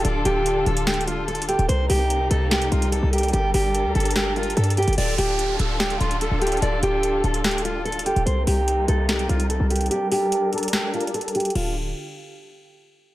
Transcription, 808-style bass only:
\new Staff \with { instrumentName = "808-style bass" } { \clef bass \time 4/4 \key d \phrygian \tempo 4 = 146 d,,8 d,,4 d,,2~ d,,16 d,,16 | c,8 c,4 c,4 c,8. c,8. | g,,8 g,,8. d,16 g,,4. g,8. g,,16 | d,,8 d,,4 d,,4 d,,8. d,,8. |
d,,8 d,,4 d,,2~ d,,16 d,,16 | c,8 c,4 c,4 c,8. c,8. | r1 | d,,4 r2. | }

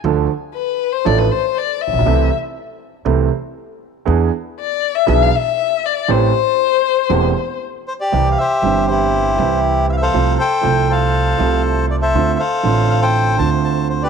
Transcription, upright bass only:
\new Staff \with { instrumentName = "Upright bass" } { \clef bass \time 4/4 \key a \minor \tempo 4 = 119 d,16. r4. r32 a,,16. r4 r16 a,,32 bes,,32 b,,32 | c,16. r4. r32 c,16. r4. r32 | e,16. r4. r32 b,,16. r4. r32 | a,,16. r4. r32 e,,16. r4. r32 |
\key c \major c,16. r8 r32 g,,4~ g,,16. r32 c,4~ c,16. r32 | c,16. r8 r32 c,4~ c,16. r32 c,4~ c,16. r32 | d,16. r8 r32 a,,4~ a,,16. r32 d,4~ d,16. r32 | }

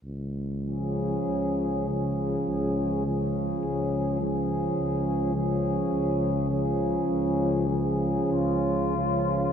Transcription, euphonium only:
\new Staff \with { instrumentName = "Euphonium" } { \clef bass \time 4/4 \key des \major \tempo 4 = 50 r8 f4 f4 f4 f8~ | f8 f4 f4 f4 f8 | }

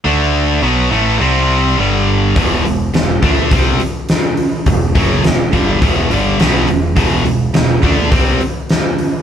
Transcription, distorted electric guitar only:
\new Staff \with { instrumentName = "Distorted electric guitar" } { \clef bass \time 4/4 \key e \minor \tempo 4 = 104 <d a d'>4 <b, fis b>8 <a, e a>8 <c g c'>4 <g, d g>4 | <e, b, e>8 <e, b,>8 <e, b,>8 <d a d'>8 <c g c'>8 r4. | <e, b,>8 <fis, cis fis>8 <e, b,>8 <g, d g>8 <e, b, e>8 <g, d g>8 <b, fis b>8 <e, b,>8 | <e, b, e>8 <e, b,>8 <e, b,>8 <d a d'>8 <c g c'>8 r4. | }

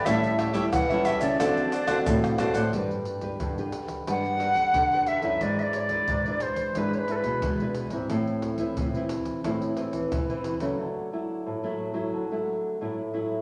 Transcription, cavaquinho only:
\new Staff \with { instrumentName = "Cavaquinho" } { \time 4/4 \key d \major \tempo 4 = 89 <g' a' cis'' e''>8 <g' a' cis'' e''>16 <g' a' cis'' e''>16 r16 <a' cis'' e''>16 <g' a' cis'' e''>16 <a' cis'' e''>16 <d' c'' d'' fis''>8 <d' c'' d'' fis''>16 <d' c'' d'' fis''>16 r8 <d' c'' d'' fis''>16 <c'' d'' fis''>16 | \key g \major r1 | r1 | r1 |
r1 | }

